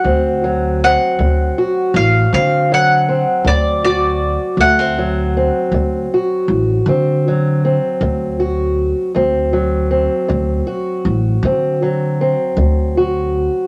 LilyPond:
<<
  \new Staff \with { instrumentName = "Mandolin" } { \time 12/8 \key d \mixolydian \tempo 4. = 53 fis''4 fis''4. f''8 f''8 fis''4 d''8 d''4 | fis''2 r1 | r1. | }
  \new Staff \with { instrumentName = "Steel-string acoustic guitar" } { \clef bass \time 12/8 \key d \mixolydian << { <fis c'>8 fis8 c'4 fis'4 c'8 fis8 c'4 fis'4 | a16 c'16 fis8 c'4 fis'4 c'8 fis8 c'4 fis'4 | c'8 fis8 c'4 fis'4 c'8 fis8 c'4 fis'4 | } \\ { d,4 r8 d4 r8 d,4 r8 d4 r8 | d,4 r8 d4 r8 d,4 r8 d4 r8 | d,4 r8 d4 r8 d,4 r8 d4 r8 | } >> }
  \new Staff \with { instrumentName = "Upright bass" } { \clef bass \time 12/8 \key d \mixolydian d,4. d,8 r8 a,,8 d4. d,4. | d,4. d,8 r8 a,,8 d4. d,4. | d,4. d,8 r8 a,,8 d4. d,4. | }
>>